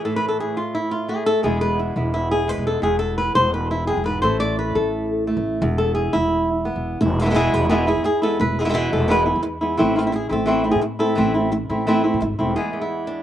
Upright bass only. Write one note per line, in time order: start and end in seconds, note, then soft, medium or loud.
1.44 1.92 E1 loud
1.96 2.53 E1 medium
2.58 2.81 E1 medium
2.83 3.32 E1 medium
3.35 3.93 E1 medium
3.97 4.21 E1 medium
4.23 4.71 A1 loud
4.75 5.32 A1 medium
5.37 5.60 A1 medium
5.62 6.10 E1 loud
6.15 6.72 E1 medium
6.76 6.99 E1 medium
7.01 7.49 E1 medium
7.53 7.93 E1 medium
7.97 8.36 E2 medium
8.41 8.88 E1 medium
8.93 9.32 E1 medium
9.36 9.75 E2 medium
9.80 10.28 A1 loud
10.31 10.70 A1 medium
10.75 11.14 A2 medium
11.18 11.66 A1 loud
11.70 12.09 A1 medium
12.14 12.21 A2 medium
12.22 12.38 G#1 medium
12.39 12.55 E1 medium